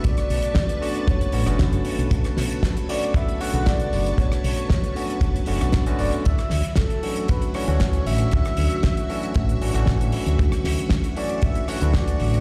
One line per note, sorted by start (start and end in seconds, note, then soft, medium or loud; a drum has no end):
0.00 0.79 C#3 medium
0.00 0.78 D3 medium
0.00 12.40 F#3 medium
0.00 0.79 A3 medium
0.00 0.79 B3 medium
0.00 0.79 F#4 medium
0.00 6.21 B4 medium
0.00 6.21 A5 medium
0.00 2.07 C#6 medium
0.04 0.14 B1 loud
0.04 0.81 D5 loud
0.04 kick loud
0.04 closed hi-hat medium
0.17 cross-stick medium
0.17 closed hi-hat medium
0.30 0.40 B1 loud
0.30 open hi-hat loud
0.42 closed hi-hat medium
0.55 kick loud
0.55 snare loud
0.55 closed hi-hat medium
0.69 closed hi-hat medium
0.81 1.30 D3 medium
0.81 1.30 A3 medium
0.81 1.30 B3 medium
0.81 1.31 C#4 medium
0.81 1.31 F#4 medium
0.81 1.10 D5 loud
0.81 open hi-hat loud
0.95 closed hi-hat medium
1.07 1.27 F#1 loud
1.07 1.86 C#5 medium
1.07 kick loud
1.07 closed hi-hat medium
1.21 closed hi-hat medium
1.32 1.43 A1 medium
1.32 1.44 D3 medium
1.32 1.44 A3 medium
1.32 1.44 B3 medium
1.32 1.44 C#4 medium
1.32 1.44 F#4 medium
1.32 open hi-hat loud
1.46 1.59 F#1 loud
1.46 2.85 D3 medium
1.46 2.85 A3 medium
1.46 2.86 B3 medium
1.46 2.86 C#4 medium
1.46 2.86 F#4 medium
1.46 cross-stick medium
1.46 closed hi-hat medium
1.59 1.69 F#1 medium
1.59 kick medium
1.59 snare loud
1.59 closed hi-hat medium
1.73 1.82 F#1 medium
1.73 closed hi-hat medium
1.85 muted fingered electric bass stroke soft
1.85 open hi-hat loud
1.98 2.08 B1 medium
1.98 closed hi-hat medium
2.11 2.21 B1 loud
2.11 6.21 C#6 medium
2.11 kick loud
2.11 closed hi-hat medium
2.24 cross-stick medium
2.24 closed hi-hat medium
2.37 2.47 B1 medium
2.37 snare medium
2.37 open hi-hat loud
2.50 closed hi-hat soft
2.63 kick loud
2.63 snare loud
2.63 closed hi-hat medium
2.77 closed hi-hat medium
2.88 3.37 D3 medium
2.88 3.37 A3 medium
2.88 3.38 B3 medium
2.88 3.38 C#4 medium
2.88 3.38 F#4 medium
2.88 3.17 D5 loud
2.88 open hi-hat loud
3.03 closed hi-hat medium
3.14 3.40 E5 loud
3.14 kick loud
3.14 closed hi-hat medium
3.28 closed hi-hat soft
3.40 3.50 D3 medium
3.40 3.51 A3 medium
3.40 3.51 B3 medium
3.40 3.51 C#4 medium
3.40 3.51 F#4 medium
3.40 3.68 F#5 loud
3.40 cross-stick medium
3.40 open hi-hat loud
3.53 3.87 B1 medium
3.53 4.93 C#3 medium
3.53 4.92 D3 medium
3.53 4.93 A3 medium
3.53 4.93 B3 medium
3.53 4.93 F#4 medium
3.53 closed hi-hat medium
3.66 4.20 D5 loud
3.66 kick loud
3.66 snare loud
3.66 closed hi-hat medium
3.80 closed hi-hat medium
3.93 4.11 F#1 medium
3.93 open hi-hat medium
4.06 closed hi-hat medium
4.18 4.28 B1 loud
4.18 5.74 C#5 loud
4.18 kick loud
4.18 closed hi-hat medium
4.32 cross-stick medium
4.32 closed hi-hat medium
4.44 4.54 B1 medium
4.44 open hi-hat loud
4.57 closed hi-hat medium
4.70 kick loud
4.70 snare loud
4.70 closed hi-hat medium
4.84 closed hi-hat soft
4.95 5.44 D3 medium
4.95 5.44 A3 medium
4.95 5.45 B3 medium
4.95 5.45 C#4 medium
4.95 5.45 F#4 medium
4.95 open hi-hat medium
5.10 closed hi-hat medium
5.21 5.40 F#1 loud
5.21 kick loud
5.21 closed hi-hat medium
5.36 closed hi-hat medium
5.46 5.57 F#1 loud
5.46 5.83 D3 medium
5.46 5.83 A3 medium
5.46 5.83 B3 medium
5.46 5.83 C#4 medium
5.46 5.84 F#4 medium
5.46 open hi-hat loud
5.61 5.94 B1 medium
5.61 cross-stick medium
5.61 closed hi-hat medium
5.72 kick loud
5.72 snare loud
5.72 closed hi-hat medium
5.86 6.23 D3 loud
5.86 6.23 A3 medium
5.86 6.24 B3 medium
5.86 6.24 C#4 medium
5.86 6.24 F#4 loud
5.86 closed hi-hat soft
5.99 6.09 F#1 medium
5.99 6.11 D5 loud
5.99 open hi-hat medium
6.13 closed hi-hat soft
6.25 6.35 D2 loud
6.25 12.40 F#4 medium
6.25 6.73 E5 loud
6.25 12.40 E5 medium
6.25 12.40 C#6 medium
6.25 kick loud
6.25 closed hi-hat medium
6.38 cross-stick medium
6.38 closed hi-hat medium
6.50 6.61 D2 medium
6.50 snare medium
6.50 open hi-hat loud
6.64 closed hi-hat medium
6.76 7.31 A4 loud
6.76 kick loud
6.76 snare loud
6.76 closed hi-hat medium
6.90 closed hi-hat soft
7.02 7.51 E3 medium
7.02 7.51 A3 medium
7.02 7.51 C#4 medium
7.02 7.52 D4 medium
7.02 7.52 F#4 medium
7.02 open hi-hat loud
7.16 closed hi-hat medium
7.28 7.56 B4 loud
7.28 kick loud
7.28 closed hi-hat medium
7.42 closed hi-hat medium
7.54 7.64 E3 medium
7.54 7.64 A3 medium
7.54 7.65 C#4 medium
7.54 7.65 D4 medium
7.54 7.65 F#4 medium
7.54 8.06 C#5 loud
7.54 cross-stick medium
7.54 open hi-hat loud
7.67 8.01 D2 medium
7.67 9.06 E3 medium
7.67 9.06 A3 medium
7.67 9.06 C#4 medium
7.67 9.07 D4 medium
7.67 9.07 F#4 medium
7.67 closed hi-hat medium
7.80 kick loud
7.80 snare loud
7.80 closed hi-hat medium
7.93 closed hi-hat medium
8.06 8.25 A1 medium
8.06 10.09 E5 loud
8.06 open hi-hat loud
8.18 closed hi-hat medium
8.31 8.42 D2 loud
8.31 kick loud
8.31 closed hi-hat medium
8.45 cross-stick medium
8.45 closed hi-hat medium
8.57 8.68 D2 medium
8.57 open hi-hat loud
8.70 closed hi-hat medium
8.83 kick loud
8.83 snare loud
8.83 closed hi-hat medium
8.97 closed hi-hat medium
9.09 9.58 E3 medium
9.09 9.58 A3 medium
9.09 9.58 C#4 medium
9.09 9.58 D4 medium
9.09 9.59 F#4 medium
9.09 open hi-hat medium
9.23 closed hi-hat soft
9.34 9.55 A1 loud
9.34 kick loud
9.34 closed hi-hat medium
9.49 closed hi-hat medium
9.61 9.71 A1 medium
9.61 9.71 E3 medium
9.61 9.71 A3 medium
9.61 9.72 C#4 medium
9.61 9.72 D4 medium
9.61 9.72 F#4 medium
9.61 open hi-hat loud
9.73 9.87 A1 medium
9.73 11.13 E3 medium
9.73 11.13 A3 medium
9.73 11.13 C#4 medium
9.73 11.14 D4 medium
9.73 11.14 F#4 medium
9.73 cross-stick medium
9.73 closed hi-hat medium
9.86 9.97 A1 medium
9.86 kick medium
9.86 snare loud
9.86 closed hi-hat medium
10.01 10.10 A1 medium
10.01 closed hi-hat medium
10.12 muted fingered electric bass stroke soft
10.12 open hi-hat loud
10.26 10.35 D2 medium
10.26 closed hi-hat medium
10.39 10.49 D2 loud
10.39 kick loud
10.39 closed hi-hat medium
10.52 cross-stick medium
10.52 closed hi-hat medium
10.64 10.74 D2 loud
10.64 snare medium
10.64 open hi-hat loud
10.79 closed hi-hat medium
10.90 kick loud
10.90 snare loud
10.90 closed hi-hat medium
11.04 closed hi-hat medium
11.16 11.65 E3 medium
11.16 11.65 A3 medium
11.16 11.65 C#4 medium
11.16 11.65 D4 medium
11.16 11.66 F#4 medium
11.16 11.41 D5 loud
11.16 open hi-hat loud
11.29 closed hi-hat medium
11.42 11.70 E5 loud
11.42 kick loud
11.42 closed hi-hat medium
11.55 closed hi-hat medium
11.68 11.78 E3 medium
11.68 11.78 A3 medium
11.68 11.78 C#4 medium
11.68 11.78 D4 medium
11.68 11.79 F#4 medium
11.68 11.96 F#5 loud
11.68 cross-stick medium
11.68 open hi-hat loud
11.81 12.15 D2 medium
11.81 12.40 E3 medium
11.81 12.40 A3 medium
11.81 12.40 D4 medium
11.81 12.40 E4 medium
11.81 12.40 F#4 medium
11.81 closed hi-hat medium
11.94 12.40 D5 loud
11.94 kick medium
11.94 snare loud
11.94 closed hi-hat medium
12.08 closed hi-hat medium
12.20 12.39 A1 medium
12.20 open hi-hat medium
12.34 closed hi-hat medium